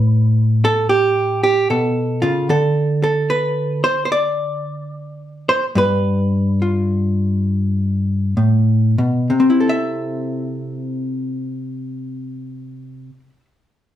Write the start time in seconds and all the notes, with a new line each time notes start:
Already playing: A2 B4
0.65 A4
0.89 G4
1.43 G4
1.70 B2 A4
2.22 C#3 F4
2.49 D3 A4
3.04 A4
3.30 B4
3.84 C5
4.05 C5
4.12 D5
5.49 C5
5.75 G2 B4
6.62 F4
8.37 A2
8.98 B2
9.30 C3
9.40 C4
9.50 E4
9.60 A4
9.69 E5